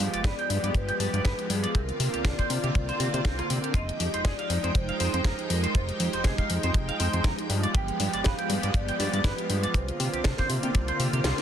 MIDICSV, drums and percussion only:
0, 0, Header, 1, 2, 480
1, 0, Start_track
1, 0, Tempo, 500000
1, 1679, Time_signature, 4, 2, 24, 8
1, 10962, End_track
2, 0, Start_track
2, 0, Title_t, "Drums"
2, 0, Note_on_c, 9, 46, 114
2, 94, Note_off_c, 9, 46, 0
2, 131, Note_on_c, 9, 42, 50
2, 227, Note_off_c, 9, 42, 0
2, 232, Note_on_c, 9, 36, 127
2, 236, Note_on_c, 9, 38, 127
2, 240, Note_on_c, 9, 42, 66
2, 328, Note_off_c, 9, 36, 0
2, 332, Note_off_c, 9, 38, 0
2, 336, Note_off_c, 9, 42, 0
2, 372, Note_on_c, 9, 42, 35
2, 468, Note_off_c, 9, 42, 0
2, 481, Note_on_c, 9, 46, 99
2, 577, Note_off_c, 9, 46, 0
2, 613, Note_on_c, 9, 42, 51
2, 709, Note_off_c, 9, 42, 0
2, 715, Note_on_c, 9, 36, 112
2, 721, Note_on_c, 9, 42, 64
2, 811, Note_off_c, 9, 36, 0
2, 817, Note_off_c, 9, 42, 0
2, 850, Note_on_c, 9, 42, 35
2, 946, Note_off_c, 9, 42, 0
2, 960, Note_on_c, 9, 46, 108
2, 1056, Note_off_c, 9, 46, 0
2, 1093, Note_on_c, 9, 42, 50
2, 1189, Note_off_c, 9, 42, 0
2, 1197, Note_on_c, 9, 38, 125
2, 1201, Note_on_c, 9, 36, 127
2, 1202, Note_on_c, 9, 42, 63
2, 1293, Note_off_c, 9, 38, 0
2, 1297, Note_off_c, 9, 36, 0
2, 1298, Note_off_c, 9, 42, 0
2, 1332, Note_on_c, 9, 42, 38
2, 1428, Note_off_c, 9, 42, 0
2, 1439, Note_on_c, 9, 46, 95
2, 1535, Note_off_c, 9, 46, 0
2, 1571, Note_on_c, 9, 42, 55
2, 1667, Note_off_c, 9, 42, 0
2, 1678, Note_on_c, 9, 36, 116
2, 1682, Note_on_c, 9, 42, 63
2, 1774, Note_off_c, 9, 36, 0
2, 1778, Note_off_c, 9, 42, 0
2, 1811, Note_on_c, 9, 42, 36
2, 1907, Note_off_c, 9, 42, 0
2, 1919, Note_on_c, 9, 46, 118
2, 2015, Note_off_c, 9, 46, 0
2, 2052, Note_on_c, 9, 42, 47
2, 2148, Note_off_c, 9, 42, 0
2, 2156, Note_on_c, 9, 36, 117
2, 2157, Note_on_c, 9, 38, 125
2, 2162, Note_on_c, 9, 42, 63
2, 2252, Note_off_c, 9, 36, 0
2, 2253, Note_off_c, 9, 38, 0
2, 2258, Note_off_c, 9, 42, 0
2, 2292, Note_on_c, 9, 42, 36
2, 2294, Note_on_c, 9, 36, 58
2, 2388, Note_off_c, 9, 42, 0
2, 2390, Note_off_c, 9, 36, 0
2, 2400, Note_on_c, 9, 46, 96
2, 2496, Note_off_c, 9, 46, 0
2, 2531, Note_on_c, 9, 42, 50
2, 2627, Note_off_c, 9, 42, 0
2, 2641, Note_on_c, 9, 42, 61
2, 2642, Note_on_c, 9, 36, 119
2, 2737, Note_off_c, 9, 42, 0
2, 2738, Note_off_c, 9, 36, 0
2, 2772, Note_on_c, 9, 42, 33
2, 2868, Note_off_c, 9, 42, 0
2, 2880, Note_on_c, 9, 46, 107
2, 2976, Note_off_c, 9, 46, 0
2, 3014, Note_on_c, 9, 42, 52
2, 3110, Note_off_c, 9, 42, 0
2, 3117, Note_on_c, 9, 38, 113
2, 3119, Note_on_c, 9, 36, 127
2, 3121, Note_on_c, 9, 42, 62
2, 3213, Note_off_c, 9, 38, 0
2, 3215, Note_off_c, 9, 36, 0
2, 3217, Note_off_c, 9, 42, 0
2, 3253, Note_on_c, 9, 37, 59
2, 3253, Note_on_c, 9, 42, 37
2, 3349, Note_off_c, 9, 37, 0
2, 3349, Note_off_c, 9, 42, 0
2, 3361, Note_on_c, 9, 46, 96
2, 3457, Note_off_c, 9, 46, 0
2, 3493, Note_on_c, 9, 42, 54
2, 3589, Note_off_c, 9, 42, 0
2, 3591, Note_on_c, 9, 36, 110
2, 3602, Note_on_c, 9, 42, 61
2, 3687, Note_off_c, 9, 36, 0
2, 3698, Note_off_c, 9, 42, 0
2, 3734, Note_on_c, 9, 42, 37
2, 3830, Note_off_c, 9, 42, 0
2, 3840, Note_on_c, 9, 46, 108
2, 3936, Note_off_c, 9, 46, 0
2, 3973, Note_on_c, 9, 42, 48
2, 4069, Note_off_c, 9, 42, 0
2, 4077, Note_on_c, 9, 38, 118
2, 4078, Note_on_c, 9, 36, 127
2, 4081, Note_on_c, 9, 42, 63
2, 4173, Note_off_c, 9, 38, 0
2, 4174, Note_off_c, 9, 36, 0
2, 4177, Note_off_c, 9, 42, 0
2, 4213, Note_on_c, 9, 42, 35
2, 4309, Note_off_c, 9, 42, 0
2, 4320, Note_on_c, 9, 46, 94
2, 4416, Note_off_c, 9, 46, 0
2, 4454, Note_on_c, 9, 42, 50
2, 4550, Note_off_c, 9, 42, 0
2, 4559, Note_on_c, 9, 36, 118
2, 4561, Note_on_c, 9, 42, 66
2, 4655, Note_off_c, 9, 36, 0
2, 4657, Note_off_c, 9, 42, 0
2, 4692, Note_on_c, 9, 42, 34
2, 4788, Note_off_c, 9, 42, 0
2, 4800, Note_on_c, 9, 46, 105
2, 4896, Note_off_c, 9, 46, 0
2, 4933, Note_on_c, 9, 42, 51
2, 5029, Note_off_c, 9, 42, 0
2, 5035, Note_on_c, 9, 36, 118
2, 5037, Note_on_c, 9, 38, 116
2, 5041, Note_on_c, 9, 42, 63
2, 5131, Note_off_c, 9, 36, 0
2, 5133, Note_off_c, 9, 38, 0
2, 5137, Note_off_c, 9, 42, 0
2, 5172, Note_on_c, 9, 42, 37
2, 5268, Note_off_c, 9, 42, 0
2, 5281, Note_on_c, 9, 46, 93
2, 5377, Note_off_c, 9, 46, 0
2, 5411, Note_on_c, 9, 42, 50
2, 5507, Note_off_c, 9, 42, 0
2, 5518, Note_on_c, 9, 36, 123
2, 5521, Note_on_c, 9, 42, 64
2, 5614, Note_off_c, 9, 36, 0
2, 5617, Note_off_c, 9, 42, 0
2, 5651, Note_on_c, 9, 42, 35
2, 5747, Note_off_c, 9, 42, 0
2, 5759, Note_on_c, 9, 46, 109
2, 5855, Note_off_c, 9, 46, 0
2, 5888, Note_on_c, 9, 42, 52
2, 5984, Note_off_c, 9, 42, 0
2, 5992, Note_on_c, 9, 38, 118
2, 5996, Note_on_c, 9, 36, 120
2, 5997, Note_on_c, 9, 42, 70
2, 6088, Note_off_c, 9, 38, 0
2, 6092, Note_off_c, 9, 36, 0
2, 6093, Note_off_c, 9, 42, 0
2, 6128, Note_on_c, 9, 36, 66
2, 6129, Note_on_c, 9, 42, 35
2, 6224, Note_off_c, 9, 36, 0
2, 6225, Note_off_c, 9, 42, 0
2, 6237, Note_on_c, 9, 46, 86
2, 6333, Note_off_c, 9, 46, 0
2, 6368, Note_on_c, 9, 42, 52
2, 6464, Note_off_c, 9, 42, 0
2, 6474, Note_on_c, 9, 36, 107
2, 6478, Note_on_c, 9, 42, 65
2, 6570, Note_off_c, 9, 36, 0
2, 6574, Note_off_c, 9, 42, 0
2, 6611, Note_on_c, 9, 42, 37
2, 6707, Note_off_c, 9, 42, 0
2, 6718, Note_on_c, 9, 46, 105
2, 6814, Note_off_c, 9, 46, 0
2, 6849, Note_on_c, 9, 42, 54
2, 6945, Note_off_c, 9, 42, 0
2, 6953, Note_on_c, 9, 36, 124
2, 6954, Note_on_c, 9, 38, 113
2, 6958, Note_on_c, 9, 42, 67
2, 7049, Note_off_c, 9, 36, 0
2, 7050, Note_off_c, 9, 38, 0
2, 7054, Note_off_c, 9, 42, 0
2, 7090, Note_on_c, 9, 42, 40
2, 7186, Note_off_c, 9, 42, 0
2, 7197, Note_on_c, 9, 46, 90
2, 7293, Note_off_c, 9, 46, 0
2, 7329, Note_on_c, 9, 42, 55
2, 7425, Note_off_c, 9, 42, 0
2, 7435, Note_on_c, 9, 36, 122
2, 7437, Note_on_c, 9, 42, 68
2, 7531, Note_off_c, 9, 36, 0
2, 7533, Note_off_c, 9, 42, 0
2, 7568, Note_on_c, 9, 42, 40
2, 7664, Note_off_c, 9, 42, 0
2, 7678, Note_on_c, 9, 46, 105
2, 7774, Note_off_c, 9, 46, 0
2, 7810, Note_on_c, 9, 42, 56
2, 7906, Note_off_c, 9, 42, 0
2, 7914, Note_on_c, 9, 38, 121
2, 7918, Note_on_c, 9, 42, 70
2, 7927, Note_on_c, 9, 36, 102
2, 8010, Note_off_c, 9, 38, 0
2, 8014, Note_off_c, 9, 42, 0
2, 8023, Note_off_c, 9, 36, 0
2, 8050, Note_on_c, 9, 42, 39
2, 8146, Note_off_c, 9, 42, 0
2, 8157, Note_on_c, 9, 46, 85
2, 8253, Note_off_c, 9, 46, 0
2, 8288, Note_on_c, 9, 42, 56
2, 8384, Note_off_c, 9, 42, 0
2, 8391, Note_on_c, 9, 36, 119
2, 8397, Note_on_c, 9, 42, 70
2, 8487, Note_off_c, 9, 36, 0
2, 8493, Note_off_c, 9, 42, 0
2, 8529, Note_on_c, 9, 42, 39
2, 8625, Note_off_c, 9, 42, 0
2, 8638, Note_on_c, 9, 46, 96
2, 8734, Note_off_c, 9, 46, 0
2, 8769, Note_on_c, 9, 42, 53
2, 8865, Note_off_c, 9, 42, 0
2, 8872, Note_on_c, 9, 36, 104
2, 8873, Note_on_c, 9, 38, 117
2, 8878, Note_on_c, 9, 42, 70
2, 8968, Note_off_c, 9, 36, 0
2, 8969, Note_off_c, 9, 38, 0
2, 8974, Note_off_c, 9, 42, 0
2, 9009, Note_on_c, 9, 42, 39
2, 9105, Note_off_c, 9, 42, 0
2, 9116, Note_on_c, 9, 46, 86
2, 9212, Note_off_c, 9, 46, 0
2, 9249, Note_on_c, 9, 42, 59
2, 9345, Note_off_c, 9, 42, 0
2, 9354, Note_on_c, 9, 36, 108
2, 9359, Note_on_c, 9, 42, 68
2, 9450, Note_off_c, 9, 36, 0
2, 9455, Note_off_c, 9, 42, 0
2, 9489, Note_on_c, 9, 42, 38
2, 9585, Note_off_c, 9, 42, 0
2, 9599, Note_on_c, 9, 46, 105
2, 9695, Note_off_c, 9, 46, 0
2, 9730, Note_on_c, 9, 42, 52
2, 9826, Note_off_c, 9, 42, 0
2, 9833, Note_on_c, 9, 38, 126
2, 9837, Note_on_c, 9, 42, 71
2, 9839, Note_on_c, 9, 36, 113
2, 9929, Note_off_c, 9, 38, 0
2, 9933, Note_off_c, 9, 42, 0
2, 9935, Note_off_c, 9, 36, 0
2, 9964, Note_on_c, 9, 38, 39
2, 9968, Note_on_c, 9, 42, 38
2, 9975, Note_on_c, 9, 36, 61
2, 10060, Note_off_c, 9, 38, 0
2, 10064, Note_off_c, 9, 42, 0
2, 10071, Note_off_c, 9, 36, 0
2, 10076, Note_on_c, 9, 46, 86
2, 10172, Note_off_c, 9, 46, 0
2, 10206, Note_on_c, 9, 42, 55
2, 10302, Note_off_c, 9, 42, 0
2, 10317, Note_on_c, 9, 42, 68
2, 10318, Note_on_c, 9, 36, 112
2, 10413, Note_off_c, 9, 42, 0
2, 10414, Note_off_c, 9, 36, 0
2, 10447, Note_on_c, 9, 42, 36
2, 10543, Note_off_c, 9, 42, 0
2, 10557, Note_on_c, 9, 46, 99
2, 10653, Note_off_c, 9, 46, 0
2, 10688, Note_on_c, 9, 42, 55
2, 10784, Note_off_c, 9, 42, 0
2, 10792, Note_on_c, 9, 38, 123
2, 10797, Note_on_c, 9, 42, 70
2, 10888, Note_off_c, 9, 38, 0
2, 10893, Note_off_c, 9, 42, 0
2, 10927, Note_on_c, 9, 38, 54
2, 10927, Note_on_c, 9, 42, 41
2, 10962, Note_off_c, 9, 38, 0
2, 10962, Note_off_c, 9, 42, 0
2, 10962, End_track
0, 0, End_of_file